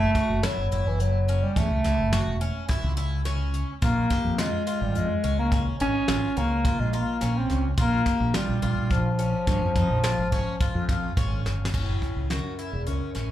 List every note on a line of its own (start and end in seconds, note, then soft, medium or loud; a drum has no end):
0.00 0.46 A3 loud
0.15 0.38 F#4 medium
0.15 kick medium
0.15 closed hi-hat medium
0.29 0.41 F#1 medium
0.43 0.89 F#3 medium
0.43 0.66 E4 medium
0.43 snare loud
0.43 closed hi-hat medium
0.58 0.69 F#1 medium
0.72 0.83 F#1 medium
0.72 1.18 E4 medium
0.72 closed hi-hat medium
0.86 1.42 F#1 medium
0.86 1.02 E3 medium
1.00 1.45 F#3 medium
1.00 closed hi-hat medium
1.28 1.51 C#4 medium
1.28 closed hi-hat medium
1.43 1.59 G3 medium
1.56 1.68 E2 medium
1.56 2.70 A3 loud
1.56 1.80 C#4 medium
1.56 kick medium
1.56 closed hi-hat medium
1.71 1.82 C#2 medium
1.84 1.96 C#2 medium
1.84 2.07 E4 medium
1.84 snare soft
1.84 closed hi-hat medium
1.99 2.21 F#1 medium
2.12 2.36 F#4 medium
2.12 snare loud
2.12 closed hi-hat medium
2.27 2.50 E1 medium
2.41 2.64 C#4 medium
2.41 closed hi-hat medium
2.69 2.92 E4 medium
2.69 kick loud
2.69 snare soft
2.69 closed hi-hat medium
2.84 3.62 C#2 medium
2.97 3.20 E4 medium
2.97 closed hi-hat medium
3.25 3.71 C#4 medium
3.25 snare soft
3.25 closed hi-hat medium
3.54 closed hi-hat medium
3.82 4.05 A#1 loud
3.82 4.41 A#3 loud
3.82 4.05 F4 medium
3.82 kick loud
3.82 closed hi-hat medium
4.10 4.33 G4 medium
4.10 kick medium
4.10 snare soft
4.10 closed hi-hat medium
4.24 4.47 F2 medium
4.38 4.83 G#3 medium
4.38 4.62 F4 medium
4.38 snare medium
4.38 closed hi-hat medium
4.67 5.13 F4 medium
4.67 closed hi-hat medium
4.81 4.93 G#1 medium
4.81 4.98 G3 medium
4.95 5.07 F2 medium
4.95 5.38 G#3 loud
4.95 closed hi-hat medium
5.24 5.69 C#2 medium
5.24 5.47 C#4 medium
5.24 closed hi-hat medium
5.39 5.65 A#3 medium
5.52 5.75 C#4 medium
5.52 kick loud
5.52 closed hi-hat medium
5.80 5.92 G#1 loud
5.80 6.39 C#4 loud
5.80 6.03 D#4 medium
5.80 closed hi-hat medium
6.08 6.20 G#1 medium
6.08 6.31 F4 medium
6.08 snare loud
6.08 closed hi-hat medium
6.36 6.71 C#2 medium
6.36 6.82 A#3 loud
6.36 6.60 C#4 medium
6.36 closed hi-hat medium
6.65 6.88 F4 medium
6.65 kick loud
6.65 closed hi-hat medium
6.79 7.02 A#1 medium
6.79 6.96 G#3 medium
6.93 7.39 A#3 medium
6.93 7.16 F4 medium
6.93 closed hi-hat medium
7.21 7.44 A#1 medium
7.21 7.67 C#4 medium
7.21 snare soft
7.21 closed hi-hat medium
7.37 7.65 C4 medium
7.50 7.72 C#2 medium
7.50 snare soft
7.50 closed hi-hat medium
7.77 8.00 A#1 loud
7.77 8.37 A#3 loud
7.77 8.01 F4 medium
7.77 kick loud
7.77 closed hi-hat medium
8.06 8.29 G4 medium
8.06 kick medium
8.06 snare soft
8.06 closed hi-hat medium
8.20 8.32 A#1 medium
8.34 8.94 G3 medium
8.34 8.57 F4 medium
8.34 snare medium
8.34 closed hi-hat medium
8.49 8.60 A#1 medium
8.62 8.74 A#1 medium
8.62 9.08 F4 medium
8.62 closed hi-hat medium
8.77 9.33 A#1 medium
8.90 11.18 F3 medium
8.90 kick medium
8.90 closed hi-hat medium
9.19 9.42 C#4 medium
9.19 closed hi-hat medium
9.47 9.59 G2 medium
9.47 9.70 C#4 medium
9.47 kick loud
9.47 snare soft
9.47 closed hi-hat medium
9.62 9.73 F2 medium
9.76 9.87 F2 medium
9.76 9.99 D#4 medium
9.76 kick medium
9.76 closed hi-hat medium
9.90 10.12 A#1 medium
10.04 10.27 F4 medium
10.04 snare loud
10.04 closed hi-hat medium
10.19 10.41 G#1 medium
10.32 10.55 C#4 medium
10.32 kick medium
10.32 closed hi-hat medium
10.61 10.83 F4 medium
10.61 kick loud
10.61 closed hi-hat medium
10.75 11.08 F2 medium
10.89 11.12 F4 medium
10.89 kick medium
10.89 closed hi-hat medium
11.17 11.43 G#1 medium
11.17 11.63 C#4 medium
11.17 kick medium
11.17 closed hi-hat medium
11.46 11.71 G1 medium
11.46 snare medium
11.65 snare medium
11.74 11.96 F#1 medium
11.74 12.32 A2 medium
11.74 12.20 C#4 medium
11.74 kick medium
11.74 crash medium
12.02 kick medium
12.02 closed hi-hat medium
12.16 12.39 C#2 medium
12.30 12.74 F#2 medium
12.30 12.53 F#4 medium
12.30 snare medium
12.30 closed hi-hat medium
12.59 12.82 E4 medium
12.59 closed hi-hat medium
12.73 12.84 E1 medium
12.73 12.90 E2 medium
12.87 12.98 C#2 medium
12.87 13.30 F#2 medium
12.87 13.10 C#4 medium
12.87 closed hi-hat medium
13.15 13.31 A1 medium
13.15 13.31 C#4 medium
13.15 snare soft
13.15 closed hi-hat medium